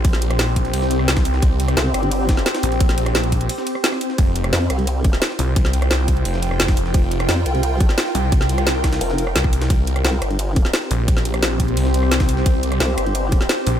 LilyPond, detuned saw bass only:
\new Staff \with { instrumentName = "Detuned saw bass" } { \clef bass \time 4/4 \key c \phrygian \tempo 4 = 174 bes,,2 c,4. c,8 | r2. r8 bes,,8~ | bes,,2 r2 | f,,4 r2 r8 c,8~ |
c,2 f,,4. f,,8 | f,,4 r2 r8 c,8~ | c,2 r4 c,4 | c,4 r2 r8 bes,,8~ |
bes,,2 c,4. c,8 | c,4 r2 r8 bes,,8 | }